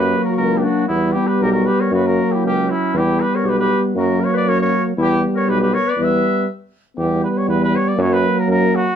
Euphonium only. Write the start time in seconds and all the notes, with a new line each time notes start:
Already playing: F#3
0.89 G3
1.93 F#3
2.94 G3
3.94 F#3
4.97 G3
5.98 G3
6.98 G3
7.97 F#3